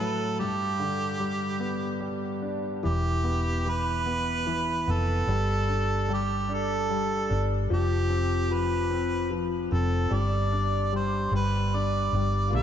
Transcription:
Already playing: grand piano A2
0.00 grand piano F#3, harmonica A4
0.40 grand piano G2, harmonica G4
0.80 grand piano D3
1.20 grand piano G3
1.60 grand piano B3
2.01 grand piano G3
2.42 grand piano D4
2.83 fingered electric bass E1, grand piano E3, harmonica G4
3.24 grand piano B3
3.65 grand piano E3
3.69 harmonica B4
4.06 grand piano B3
4.47 grand piano E3
4.87 fingered electric bass F1, grand piano B3, harmonica A4
5.27 fingered electric bass G1, grand piano G3
5.69 grand piano D4
6.09 grand piano G3
6.13 harmonica G4
6.49 grand piano D4
6.54 harmonica A4
6.90 grand piano G3
7.30 fingered electric bass G1, grand piano D4
7.70 fingered electric bass F1, grand piano F3, harmonica G4
8.10 grand piano C4
8.49 grand piano F3
8.54 harmonica B4
8.91 grand piano C4
9.31 grand piano F3
9.72 fingered electric bass F1, grand piano C4, harmonica A4
10.11 fingered electric bass G1, grand piano G3, harmonica D5
10.52 grand piano D4
10.93 grand piano G3, harmonica C5
11.31 fingered electric bass G1, grand piano G3
11.36 harmonica B4
11.74 grand piano D4, harmonica D5
12.13 fingered electric bass G1, grand piano G3
12.53 fingered electric bass A#1, string section D3 G3 A#3 F4, grand piano A#3, harmonica F5

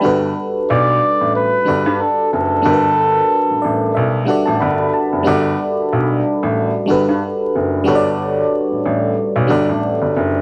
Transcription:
Already playing: fm electric piano G5
0.01 fm electric piano G3 D4 F#4 A4
0.05 grand piano G1, fm electric piano B4
0.70 grand piano B1, flugelhorn D5
1.21 grand piano A1
1.36 flugelhorn B4
1.65 grand piano G1, fm electric piano G3 D4 F#4 A4
1.70 fm electric piano D5
1.86 grand piano G2
2.01 flugelhorn A4
2.33 grand piano F#1, flugelhorn A4
2.62 grand piano G1, fm electric piano G3 D4 F#4 A4
2.67 fm electric piano A#4
2.73 fm electric piano B4
3.49 grand piano A1
3.62 grand piano A1, fm electric piano D5
3.95 grand piano B1, fm electric piano E5
4.25 fm electric piano G3 D4 F#4 A4 F#5
4.30 fm electric piano D5
4.46 grand piano A1, fm electric piano A5
4.60 grand piano G1, fm electric piano B5
4.93 fm electric piano A5
5.13 grand piano F#1
5.23 fm electric piano G3 D4 F#4 A4
5.27 grand piano G1, fm electric piano D5
5.93 grand piano B1
6.43 grand piano A1
6.86 fm electric piano G3 D4 F#4 A4
6.90 grand piano G1, fm electric piano B4
7.09 grand piano G2
7.56 grand piano F#1
7.84 grand piano G1, fm electric piano G3 D4 F#4 A4
7.89 fm electric piano C#5
7.95 fm electric piano D5
8.71 grand piano A1
8.85 grand piano A1
9.36 grand piano B1
9.47 grand piano G1, fm electric piano G3 D4 F#4 A4
9.52 fm electric piano D5
9.69 grand piano A1
10.02 grand piano G1
10.16 grand piano F#1

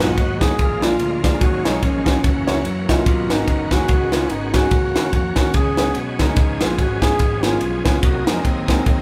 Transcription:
Already playing: grand piano G#2, tonewheel organ D#3 F#3 G#3 B3 F#4
0.00 fingered electric bass B1, duduk F4, snare, ride
0.18 fingered electric bass D#2, duduk F#4, kick, ride
0.41 grand piano G#3 B3 D#4 F#4 G#4, duduk G#4, kick, snare, ride
0.58 fingered electric bass A#1, grand piano A#2, tonewheel organ D3 F3 G#3 A#3 E4, kick, ride
0.64 tonewheel organ F4
0.82 grand piano G#3 A#3 D4 F4 A#4, duduk F4, snare, ride
0.99 fingered electric bass D2, ride
1.23 grand piano G#3 A#3 D4 F4 G#4, duduk F4, kick, snare, ride
1.40 fingered electric bass D#2, tonewheel organ D#3 F#3 G#3 C#4 F4, grand piano D#3, duduk F#4, kick, ride
1.64 fingered electric bass B1, grand piano G#3 D#4 F4 F#4 C#5, duduk D#4, snare, ride
1.82 fingered electric bass A#1, duduk C#4, kick, ride
2.05 grand piano G#3 D#4 F4 F#4 G#4, kick, snare, ride
2.23 fingered electric bass F#1, tonewheel organ E3 F#3 A3 C#4 F#4, kick, ride
2.28 tonewheel organ A#3
2.47 fingered electric bass C#2, grand piano A#3 C#4 E4 F#4 C#5, snare, ride
2.64 fingered electric bass F#2, ride
2.89 fingered electric bass C2, grand piano A#3 C#4 E4 F#4 D#5, duduk F4, kick, snare, ride
3.06 fingered electric bass B1, grand piano B2, tonewheel organ D3 A#3 B3 C#4 F#4, kick, ride
3.10 tonewheel organ D#3
3.29 fingered electric bass G#1, grand piano A#3 C#4 D#4 F#4 B4, duduk D#4, snare, ride
3.48 fingered electric bass F#1, kick, ride
3.71 grand piano A#3 C#4 D#4 F#4 G#4, duduk F#4, kick, snare, ride
3.86 fingered electric bass C#2, grand piano C#3, tonewheel organ D#3 G#3 B3 C#4 F#4, kick, ride
4.12 grand piano G#3 C#4 D#4 F#4 B4, duduk F4, snare, ride
4.30 fingered electric bass G#1, duduk D#4, ride
4.54 grand piano G#3 C#4 D#4 F#4 G#4, duduk F#4, kick, snare, ride
4.70 fingered electric bass C#2, grand piano C#3, tonewheel organ A#3 C#4 F#4, kick, ride
4.95 fingered electric bass D#2, grand piano C#4 F#4 A#4, snare, ride
5.13 fingered electric bass F2, duduk F#4, kick, ride
5.36 fingered electric bass D#2, grand piano C#4 F#4 A#4, duduk F#4, kick, snare, ride
5.53 fingered electric bass C#2, grand piano C#3, tonewheel organ F3 G#3 B3 C#4 G#4, duduk G#4, kick, ride
5.59 tonewheel organ F#3
5.77 grand piano G#3 B3 C#4 F#4 B4, snare, ride
5.95 fingered electric bass B2, ride
6.19 fingered electric bass D2, grand piano G#3 B3 C#4 F#4 A#4, duduk D#4, kick, snare, ride
6.36 fingered electric bass C#2, grand piano C#3, tonewheel organ F3 G#3 B3 C#4 G#4, kick, ride
6.60 fingered electric bass A#1, grand piano G#3 B3 C#4 F4 B4, duduk F4, snare, ride
6.78 fingered electric bass G#1, duduk F#4, kick, ride
7.02 grand piano G#3 B3 C#4 F4 G#4, duduk G#4, kick, snare, ride
7.19 fingered electric bass G#1, kick, ride
7.43 grand piano G#3 B3 C#4 F4 A#4, duduk F4, snare, ride
7.61 fingered electric bass B1, ride
7.84 fingered electric bass C#2, grand piano G#3 B3 C#4 F4 B4, duduk F4, kick, snare, ride
8.02 fingered electric bass C2, grand piano C3, tonewheel organ F#3 A#3 B3 D#4 G#4, duduk F#4, kick, ride
8.08 tonewheel organ C4
8.27 fingered electric bass F2, grand piano G#3 C4 D#4 F#4 A#4, duduk D#4, snare, ride
8.43 fingered electric bass D#2, duduk C4, kick, ride
8.68 grand piano G#3 C4 D#4 F#4 A#4, kick, snare, ride
8.86 fingered electric bass D#2, kick, ride

